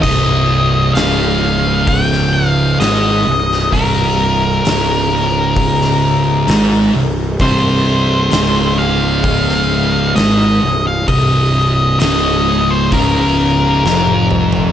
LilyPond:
<<
  \new Staff \with { instrumentName = "Lead electric guitar" } { \time 4/4 \key c \phrygian \tempo 4 = 65 ees''4 f''4 g''8 f''8 ees''4 | bes'2.~ bes'8 r8 | c''4. f''4. ees''8. f''16 | ees''4 ees''8. c''16 bes'4. r8 | }
  \new Staff \with { instrumentName = "Distorted electric guitar" } { \clef bass \time 4/4 \key c \phrygian <c, c>4 <des, des>2 <aes, aes>8 c,8 | <c, c>4 <des, des>2 <aes, aes>8 c,8 | <c, c>4 <des, des>2 <aes, aes>8 c,8 | <c, c>4 <des, des>4 <des, des>4 <f, f>4 | }
  \new Staff \with { instrumentName = "Picked electric bass" } { \clef bass \time 4/4 \key c \phrygian c,,4 des,,2 aes,,8 c,,8 | c,,4 des,,2 aes,,8 c,,8 | c,,4 des,,2 aes,,8 c,,8 | c,,4 des,,4 des,,4 f,,4 | }
  \new DrumStaff \with { instrumentName = "Drums" } \drummode { \time 4/4 <cymc bd>4 <hho sn>4 <hho bd>16 sn8. <hho sn>8. sn16 | <hho bd>4 <hho sn>4 <hho bd>16 sn8. <hho sn>4 | <hho bd>4 <hho sn>4 <hho bd>16 sn8. <hho sn>4 | <hho bd>4 <hho sn>4 <hho bd>4 sn16 tommh16 toml16 tomfh16 | }
>>